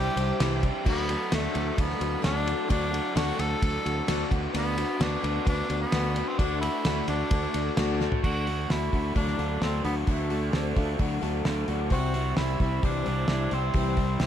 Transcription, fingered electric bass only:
0.16 C2
0.40 C2
0.86 D2
1.32 D2
1.55 D2
1.78 D2
2.00 D2
2.24 D2
2.70 D2
3.16 D2
3.39 D2
3.62 D2
3.86 D2
4.08 D2
4.31 D2
4.54 D2
5.00 D2
5.23 D2
5.47 D2
5.70 D2
5.93 D2
6.39 D2
6.86 D2
7.08 D2
7.31 D2
7.54 D2
7.78 D2
8.24 D2
8.70 D2
8.93 D2
9.15 D2
9.39 D2
9.61 D2
9.85 D2
10.07 D2
10.54 D2
10.77 D2
10.99 D2
11.22 D2
11.45 D2
11.68 D2
11.91 C2
12.38 C2
12.60 C2
12.83 C2
13.07 C2
13.29 C2
13.52 C2
13.74 C2
14.20 C2

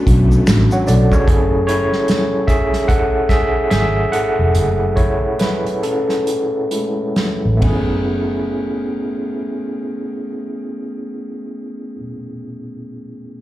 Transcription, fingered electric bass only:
0.08 B1
0.49 A1
0.89 B1
1.12 C#2
1.28 F#1
3.72 G#1
4.39 F1
4.56 F#1
7.45 A1
7.62 F#1

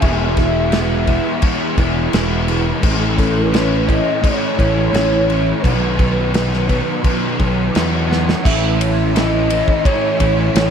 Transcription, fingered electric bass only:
0.03 E1
1.77 E1
2.14 E1
2.83 A1
4.59 A1
4.94 A1
5.65 B1
7.40 B1
7.76 E2
8.46 A1
10.21 A1
10.55 A1

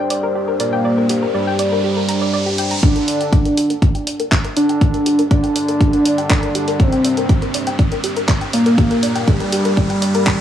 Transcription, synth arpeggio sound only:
0.10 D5
0.23 A#4
0.35 G4
0.48 A#4
0.60 D5
0.73 G5
0.85 D5
0.98 A#4
1.10 G4
1.22 A#4
1.34 D5
1.47 G5
1.59 D5
1.72 A#4
1.84 G4
1.97 A#4
2.09 A#5
2.21 D5
2.34 D5
2.46 G4
2.58 G5
2.71 A#5
2.83 G4
2.96 A#4
3.08 D5
3.21 G5
3.33 D5
3.45 A#4
3.57 G4
3.70 A#4
3.82 D5
3.95 G5
4.07 D5
4.20 A#4
4.32 G4
4.45 A#4
4.57 D5
4.69 G5
4.82 D5
4.94 A#4
5.06 G4
5.19 A#4
5.31 D5
5.44 G5
5.56 D5
5.69 A#4
5.81 G4
5.93 A#4
6.05 D5
6.18 G5
6.30 D5
6.43 A#4
6.55 G4
6.68 A#4
6.80 D5
6.93 G5
7.05 D5
7.17 A#4
7.29 G4
7.42 A#4
7.54 D5
7.67 G5
7.79 D5
7.92 A#4
8.04 G4
8.17 A#4
8.29 D5
8.41 G5
8.53 D5
8.66 A#4
8.78 G4
8.91 A#4
9.03 D5
9.15 G5
9.28 D5
9.40 A#4
9.52 G4
9.65 A#4
9.77 D5
9.90 G5
10.02 D5
10.15 A#4
10.27 G5

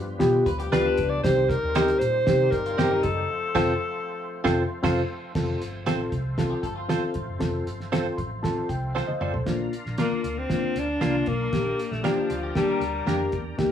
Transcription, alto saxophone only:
0.72 B4
1.10 D5
1.23 C5
1.49 A#4
1.99 C5
2.51 A#4
3.03 A4
10.01 A#3
10.39 C4
10.79 D4
11.28 A#3
11.91 A3
12.05 F3
12.56 G3
13.08 A#3

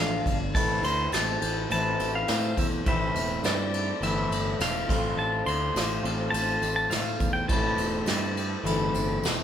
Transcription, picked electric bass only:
Already playing: A1
0.26 G1
0.54 A1
0.82 D2
1.12 A1
1.42 A1
1.70 A1
2.00 A1
2.29 A2
2.58 E2
2.86 A1
3.15 E1
3.43 G2
4.01 G1
4.30 G1
4.59 E1
4.89 A1
5.17 A1
5.46 D2
5.74 A1
6.03 A1
6.32 A1
6.62 A1
6.91 A2
7.20 E2
7.50 A1
7.76 E1
8.06 G2
8.64 G1
8.94 G1
9.23 E1

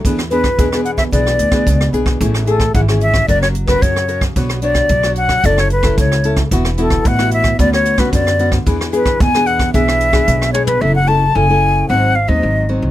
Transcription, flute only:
0.30 B4
0.85 F#5
0.97 E5
1.12 D5
2.48 A4
2.75 F#5
3.02 E5
3.28 D5
3.42 C#5
3.67 B4
3.82 C#5
4.63 D5
5.17 F#5
5.46 D5
5.60 C#5
5.72 B4
6.00 C#5
6.80 A4
7.07 F#5
7.33 E5
7.60 D5
7.74 C#5
7.99 B4
8.13 D5
8.95 B4
9.21 G#5
9.47 F#5
9.74 E5
10.53 C#5
10.66 B4
10.81 E5
10.95 F#5
11.08 A5
11.36 G#5
11.89 F#5
12.15 F5
12.28 D#5

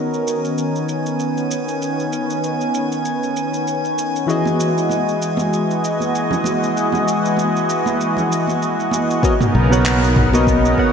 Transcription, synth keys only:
Already playing: B3 F#4 A#4 C#5 D#5
4.26 E3 E4 F#4 G#4 D#5
9.23 B3 F#4 A#4 C#5 D#5
9.70 B3 F#4 A#4 C#5 F#5
10.32 B3 F#4 A#4 C#5 D#5
10.77 B3 F#4 A#4 C#5 F#5

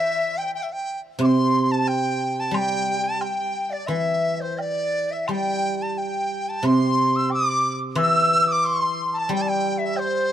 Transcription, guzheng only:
Already playing: E3
1.19 C3
2.51 G3
3.88 E3
5.29 G3
6.63 C3
7.95 E3
9.29 G3

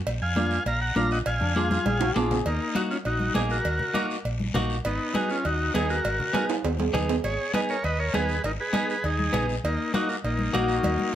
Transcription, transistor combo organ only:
0.22 F5 G#5
0.67 F5 A#5
0.81 F#5 A#5
0.96 F5 A#5
1.12 D#5 F#5
1.27 F5 G#5
2.47 A#3 D#4
2.76 D#4 F#4
2.91 C#4 F4
3.06 D#4 F#4
3.36 D#4 G#4
3.51 F#4 A#4
4.85 B3 D#4
5.16 D#4 F#4
5.31 C#4 F4
5.46 D#4 F#4
5.75 D#4 G#4
5.90 F#4 A#4
7.24 G#4 C#5
7.54 B4 D#5
7.70 A#4 C#5
7.85 B4 D#5
7.99 A#4 C#5
8.15 G#4 B4
8.45 D#4 A#4
8.60 G#4 B4
8.90 G#4 B4
9.05 D#4 G#4
9.65 A#3 D#4
9.95 D#4 F#4
10.09 F#4 A#4
10.25 A#3 D#4

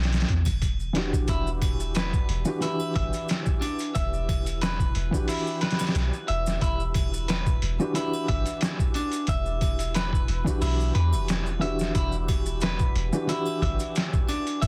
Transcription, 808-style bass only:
Already playing: B1
0.29 E2
0.47 E1
1.29 E1
2.29 E1
2.96 G1
3.96 E1
4.96 E1
5.95 B1
6.29 E1
6.62 E1
7.63 E1
8.29 G1
9.28 E1
10.29 E1
10.62 B1
10.95 E2
11.13 E1
11.95 E1
12.95 E1
13.62 G1
14.62 E1

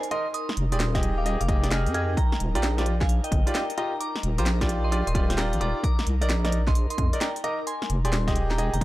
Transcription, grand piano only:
0.11 D#4 A#4 D#5
0.72 G4 G#4 D5
0.95 G4 G#4 D#5
1.26 G4 G#4 D#5
1.49 G4 G#4 D#5
1.64 G4 G#4 D5
1.71 G4 G#4 D#5
1.94 G4 G#4 D#5
2.55 F4 G4 D5
2.78 F4 G4 D5
3.47 F4 G4 D5
3.78 F4 G4 D#5
4.38 F4 G4 C5
4.61 F4 G4 D5
4.92 F4 G4 D5
5.15 F4 G4 D5
5.30 F4 G4 C5
5.38 F4 G4 D5
5.61 F4 G4 D5
6.21 D#4 A#4 D5
6.44 D#4 A#4 D5
7.13 D#4 A#4 D5
7.44 D#4 A#4 D#5
8.05 G4 G#4 D5
8.28 G4 G#4 D#5
8.58 G4 G#4 D#5

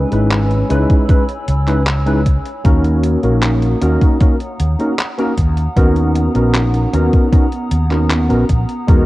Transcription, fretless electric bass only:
0.12 G#1
0.70 C#2
1.48 C#2
2.65 D#2
3.24 A#1
3.82 D#2
4.60 D#2
5.38 D#2
5.77 D#2
6.35 A#1
6.93 D#2
7.71 D#2
8.30 A#1
8.49 A#1
8.88 E2

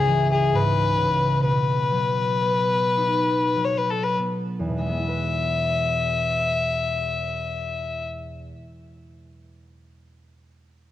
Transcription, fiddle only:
Already playing: G#4
0.32 G#4
0.55 B4
1.45 B4
3.64 C#5
3.78 B4
3.90 A4
4.04 B4
4.84 E5

